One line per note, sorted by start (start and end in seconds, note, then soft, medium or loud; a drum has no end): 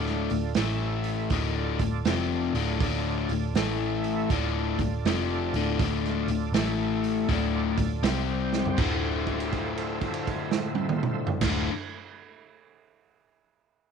0.00 0.27 D1 medium
0.00 0.29 D2 medium
0.00 0.30 A2 medium
0.00 0.30 D3 loud
0.00 0.54 D4 medium
0.00 0.54 F4 medium
0.00 0.54 A4 medium
0.00 0.54 D5 medium
0.06 snare soft
0.30 0.55 D1 medium
0.30 0.52 D2 medium
0.30 0.52 A2 medium
0.30 open hi-hat medium
0.55 1.28 A1 medium
0.55 1.31 A2 medium
0.55 1.31 E3 medium
0.55 1.31 A3 medium
0.55 1.31 E4 medium
0.55 1.31 A4 medium
0.55 snare loud
0.55 open hi-hat medium
0.59 1.32 E5 medium
1.04 open hi-hat medium
1.29 1.76 D1 medium
1.29 1.79 D2 medium
1.29 1.79 A2 medium
1.29 1.79 D3 medium
1.29 1.56 D#4 medium
1.29 1.56 F#4 medium
1.29 1.55 A#4 medium
1.29 1.55 D#5 medium
1.29 kick medium
1.29 open hi-hat medium
1.57 3.54 D4 medium
1.57 3.54 F4 medium
1.57 3.54 A4 medium
1.57 3.54 D5 medium
1.79 2.04 D1 medium
1.79 2.02 D2 medium
1.79 2.02 A2 medium
1.79 kick medium
1.79 open hi-hat medium
2.05 2.51 F1 medium
2.05 2.54 F2 medium
2.05 2.54 C3 medium
2.05 2.54 F3 medium
2.05 snare loud
2.05 open hi-hat medium
2.54 2.79 D1 medium
2.54 2.80 D2 medium
2.54 2.80 A2 medium
2.54 2.81 D3 loud
2.54 open hi-hat medium
2.80 3.26 D1 medium
2.80 3.29 D2 medium
2.80 3.29 A2 loud
2.80 3.29 D3 medium
2.80 kick loud
2.80 open hi-hat medium
3.29 3.54 D1 medium
3.29 3.51 D2 medium
3.29 3.51 A2 medium
3.29 open hi-hat medium
3.54 4.26 A1 medium
3.54 4.30 A2 medium
3.54 4.30 E3 medium
3.54 4.30 A3 medium
3.54 4.31 A3 medium
3.54 4.31 A4 medium
3.54 4.30 E5 medium
3.54 snare loud
3.54 open hi-hat medium
3.58 4.31 E4 medium
4.04 open hi-hat soft
4.30 4.76 D1 medium
4.30 4.78 D2 medium
4.30 4.79 A2 loud
4.30 4.79 D3 loud
4.30 6.53 D4 medium
4.30 6.53 F4 medium
4.30 6.53 A4 medium
4.30 6.53 D5 medium
4.30 kick medium
4.30 open hi-hat medium
4.78 5.03 D1 medium
4.78 5.00 D2 medium
4.78 5.01 A2 medium
4.78 kick medium
4.78 open hi-hat medium
5.05 5.50 F1 medium
5.05 5.53 F2 medium
5.05 5.53 C3 medium
5.05 5.53 F3 medium
5.05 snare loud
5.05 open hi-hat medium
5.54 5.78 D1 medium
5.54 5.79 D2 medium
5.54 5.80 A2 medium
5.54 5.80 D3 medium
5.54 open hi-hat medium
5.79 6.25 D1 medium
5.79 6.27 D2 medium
5.79 6.28 A2 medium
5.79 6.28 D3 loud
5.79 kick loud
5.79 open hi-hat medium
6.04 snare soft
6.28 6.52 D1 medium
6.28 6.50 D2 medium
6.28 6.50 A2 medium
6.28 open hi-hat medium
6.52 7.24 A1 medium
6.52 7.27 A2 medium
6.52 7.28 E3 medium
6.52 7.29 A3 medium
6.52 7.29 E4 medium
6.52 snare loud
6.52 open hi-hat medium
6.57 7.30 A4 medium
6.57 7.30 E5 medium
7.04 open hi-hat medium
7.28 7.75 D1 medium
7.28 7.76 D2 medium
7.28 7.76 A2 medium
7.28 7.77 D3 medium
7.28 8.04 F4 medium
7.28 8.05 A4 medium
7.28 8.05 D5 medium
7.28 kick medium
7.28 open hi-hat medium
7.33 8.05 D4 medium
7.77 8.02 D1 medium
7.77 7.99 D2 medium
7.77 7.99 A2 medium
7.77 kick medium
7.77 open hi-hat medium
8.03 8.74 C2 medium
8.03 8.76 C3 medium
8.03 8.78 G3 medium
8.03 8.78 C4 loud
8.03 snare loud
8.03 open hi-hat medium
8.07 8.80 C4 medium
8.07 8.80 G4 medium
8.07 8.78 C5 medium
8.07 8.80 G5 medium
8.53 snare medium
8.65 floor tom medium
8.77 11.27 D1 medium
8.77 11.41 D2 medium
8.77 11.43 A2 medium
8.77 11.45 D3 loud
8.77 11.29 F4 medium
8.77 11.29 A4 medium
8.77 11.29 C5 medium
8.77 11.29 E5 medium
8.77 kick loud
8.77 crash medium
9.27 kick medium
9.27 crash soft
9.40 crash soft
9.52 kick medium
9.52 crash soft
9.77 crash soft
10.01 kick medium
10.01 crash soft
10.14 crash soft
10.27 kick medium
10.27 crash soft
10.51 snare medium
10.75 high tom medium
10.89 mid tom medium
11.03 mid tom loud
11.27 floor tom loud
11.41 11.68 D1 medium
11.41 11.70 D2 medium
11.41 11.71 A2 loud
11.41 11.71 F4 medium
11.41 11.71 A4 medium
11.41 11.71 C5 medium
11.41 11.71 E5 medium
11.41 kick loud
11.41 snare medium
11.41 crash loud
11.46 11.72 D3 loud